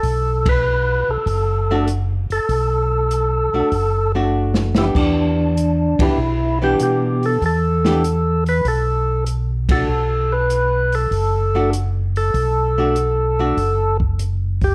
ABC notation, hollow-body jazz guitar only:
X:1
M:4/4
L:1/8
Q:"Swing" 1/4=98
K:Bm
V:1 name="Hollow-body jazz guitar"
z4 z [A,DF] z2 | z3 [A,DF] z [A,DF]2 [E,B,DG]- | [E,B,DG]2 z [E,B,DG] z [E,B,DG]3 | z [E,B,DG] z4 z [A,DF] |
z4 z [A,DF] z2 | z [A,DF] z [A,DF] z4 |]